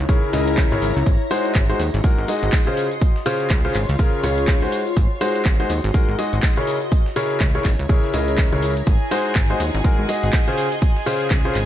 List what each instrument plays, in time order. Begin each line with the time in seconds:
Already playing: ambient pad E4 C#5 A#5
0.09 grand piano C#3 E4 G#4 A#4 C#5, kick, closed hi-hat, tambourine, cabasa
0.33 analog synth bass C#2, grand piano C#3 E4 G#4 A#4 D#5, closed hi-hat, open hi-hat, tambourine, cabasa
0.47 closed hi-hat, tambourine, cabasa
0.57 kick, snare, clap, closed hi-hat, tambourine, cabasa
0.72 analog synth bass G#1, grand piano C#3 E4 G#4 A#4 C#5
0.82 analog synth bass G#1, closed hi-hat, open hi-hat, tambourine, cabasa
0.96 analog synth bass C#2, closed hi-hat, tambourine, cabasa
1.06 analog synth bass G#1, ambient pad F#4, kick, closed hi-hat, tambourine, cabasa
1.31 grand piano G#3 D#4 F#4 G#4 C5, closed hi-hat, open hi-hat, tambourine, cabasa
1.44 ambient pad D#5, closed hi-hat, tambourine, cabasa
1.55 analog synth bass G#1, kick, snare, clap, closed hi-hat, cabasa
1.70 grand piano G#3 D#4 F#4 G#4 C5, closed hi-hat
1.80 analog synth bass D#2, closed hi-hat, open hi-hat, tambourine, cabasa
1.84 ambient pad C6
1.94 analog synth bass G#1, snare, closed hi-hat, tambourine, cabasa
2.04 grand piano G#3 D#4 F#4 G#4 A#4, kick, closed hi-hat, tambourine, cabasa
2.18 analog synth bass G#1
2.28 grand piano G#3 D#4 F#4 G#4 D#5, closed hi-hat, open hi-hat, tambourine, cabasa
2.43 analog synth bass G#1, closed hi-hat, tambourine, cabasa
2.52 kick, snare, clap, closed hi-hat, open hi-hat, cabasa
2.67 grand piano C#3 C#4 F4 G#4 C5
2.77 ambient pad F4, closed hi-hat, open hi-hat, tambourine, cabasa
2.88 ambient pad C#5, closed hi-hat, tambourine, cabasa
3.01 kick, closed hi-hat, cabasa
3.16 snare
3.26 grand piano C#3 C#4 F4 G#4 C5, closed hi-hat, open hi-hat, tambourine, cabasa
3.40 closed hi-hat, tambourine, cabasa
3.50 analog synth bass C#2, kick, snare, clap, closed hi-hat, tambourine, cabasa
3.65 grand piano C#3 C#4 F4 G#4 C5
3.74 analog synth bass G#1, clap, closed hi-hat, open hi-hat, tambourine, cabasa
3.89 analog synth bass C#2, closed hi-hat, tambourine, cabasa
3.99 grand piano C#3 C#4 F4 G#4 A#4, kick, closed hi-hat, tambourine, cabasa
4.23 analog synth bass C#2, grand piano C#3 C#4 F4 G#4 C#5, closed hi-hat, open hi-hat, tambourine, cabasa
4.38 closed hi-hat, tambourine, cabasa
4.48 kick, snare, clap, closed hi-hat, tambourine, cabasa
4.62 grand piano G#3 D#4 F#4 G#4 C5
4.72 ambient pad F#4, closed hi-hat, open hi-hat, tambourine, cabasa
4.87 closed hi-hat, tambourine, cabasa
4.97 analog synth bass G#1, kick, closed hi-hat, cabasa
5.04 ambient pad D#5
5.21 grand piano G#3 D#4 F#4 G#4 C5, closed hi-hat, open hi-hat, tambourine, cabasa
5.35 closed hi-hat, tambourine, cabasa
5.45 analog synth bass G#1, kick, snare, clap, closed hi-hat, cabasa
5.60 grand piano G#3 D#4 F#4 G#4 C5, closed hi-hat
5.70 analog synth bass D#2, closed hi-hat, open hi-hat, tambourine, cabasa
5.84 analog synth bass G#1, snare, closed hi-hat, tambourine, cabasa
5.94 grand piano G#3 D#4 F#4 G#4 A#4, kick, closed hi-hat, tambourine, cabasa
6.09 analog synth bass G#1
6.19 grand piano G#3 D#4 F#4 G#4 D#5, closed hi-hat, open hi-hat, tambourine, cabasa
6.33 analog synth bass G#1, closed hi-hat, tambourine, cabasa
6.43 kick, snare, clap, closed hi-hat, open hi-hat, cabasa
6.57 grand piano C#3 E4 G#4 A#4 C#5
6.67 ambient pad E4, closed hi-hat, open hi-hat, tambourine, cabasa
6.78 ambient pad C#5, closed hi-hat, tambourine, cabasa
6.91 kick, closed hi-hat, tambourine, cabasa
7.06 snare
7.16 grand piano C#3 E4 G#4 A#4 C#5, closed hi-hat, open hi-hat, tambourine, cabasa
7.30 closed hi-hat, tambourine, cabasa
7.40 analog synth bass C#2, kick, snare, clap, closed hi-hat, cabasa
7.51 ambient pad A#5
7.55 grand piano C#3 E4 G#4 A#4 C#5
7.65 analog synth bass G#1, kick, snare, clap, closed hi-hat, open hi-hat, tambourine, cabasa
7.79 analog synth bass C#2, closed hi-hat, tambourine, cabasa
7.89 grand piano C#3 E4 G#4 A#4 C#5, kick, closed hi-hat, tambourine, cabasa
8.04 snare
8.13 analog synth bass C#2, grand piano C#3 E4 G#4 A#4 D#5, closed hi-hat, open hi-hat, tambourine, cabasa
8.28 closed hi-hat, tambourine, cabasa
8.38 kick, snare, clap, closed hi-hat, cabasa
8.52 analog synth bass C#2, grand piano C#3 E4 G#4 A#4 C#5
8.62 closed hi-hat, open hi-hat, tambourine, cabasa
8.77 closed hi-hat, tambourine, cabasa
8.87 analog synth bass G#1, ambient pad F#4, violin section G#4 G#5, kick, closed hi-hat, tambourine, cabasa
9.11 grand piano G#3 D#4 F#4 G#4 C5, closed hi-hat, open hi-hat, ride, tambourine, cabasa
9.25 ambient pad D#5, closed hi-hat, tambourine, cabasa
9.35 analog synth bass G#1, kick, snare, clap, closed hi-hat, cabasa
9.50 grand piano G#3 D#4 F#4 G#4 C5, closed hi-hat
9.60 analog synth bass D#2, closed hi-hat, open hi-hat, ride, tambourine, cabasa
9.64 ambient pad C6
9.74 analog synth bass G#1, snare, closed hi-hat, tambourine, cabasa
9.84 grand piano G#3 D#4 F#4 G#4 A#4, kick, closed hi-hat, tambourine, cabasa
9.99 analog synth bass G#1
10.09 grand piano G#3 D#4 F#4 G#4 D#5, closed hi-hat, open hi-hat, ride, tambourine, cabasa
10.23 analog synth bass G#1, closed hi-hat, tambourine, cabasa
10.33 kick, snare, clap, closed hi-hat, open hi-hat, tambourine, cabasa
10.48 grand piano C#3 C#4 F4 G#4 C5
10.57 ambient pad F4, closed hi-hat, open hi-hat, ride, tambourine, cabasa
10.72 closed hi-hat, tambourine, cabasa
10.82 kick, closed hi-hat, tambourine, cabasa
10.96 snare
11.05 grand piano C#3 C#4 F4 G#4 C5, ambient pad C#5, closed hi-hat, open hi-hat, ride, tambourine, cabasa
11.21 closed hi-hat, tambourine, cabasa
11.31 analog synth bass C#2, kick, snare, clap, closed hi-hat, cabasa
11.45 grand piano C#3 C#4 F4 G#4 C5, ambient pad G#5
11.55 analog synth bass G#1, clap, closed hi-hat, open hi-hat, ride, tambourine, cabasa